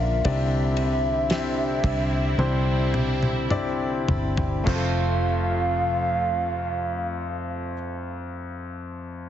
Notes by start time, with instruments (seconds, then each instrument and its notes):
Already playing: fingered electric bass A#1, steel-string acoustic guitar A#2 A#3 D4 A#4, analog synth pad D3 F3 A#3 F4, grand piano C#4 D4 F4 A#4
0.01 soft synth lead E5
0.24 fingered electric bass C2, steel-string acoustic guitar C3, grand piano C3 C4 D4 D#4 G4 D5, analog synth pad G3 C4 E4, kick, ride
0.31 grand piano E4
0.77 steel-string acoustic guitar D4, ride
1.30 grand piano C4 D4 E4 G4 E5, steel-string acoustic guitar G4, snare, ride
1.84 fingered electric bass C2, steel-string acoustic guitar D4, kick, ride
2.38 fingered electric bass C2, grand piano C4 D4 E4 G4 C5, steel-string acoustic guitar E4, high tom
2.94 steel-string acoustic guitar G4, mid tom
3.23 mid tom
3.50 grand piano C4 D4 E4 G4 D5, steel-string acoustic guitar E4, mid tom
4.08 fingered electric bass G1, steel-string acoustic guitar G4, floor tom
4.37 floor tom
4.64 fingered electric bass F1, grand piano F2 A3 C4 F4, analog synth pad C3 F3 A3 F4, steel-string acoustic guitar F3, soft synth lead F5, kick, crash
4.68 steel-string acoustic guitar C4 F4, grand piano C5
4.76 steel-string acoustic guitar A4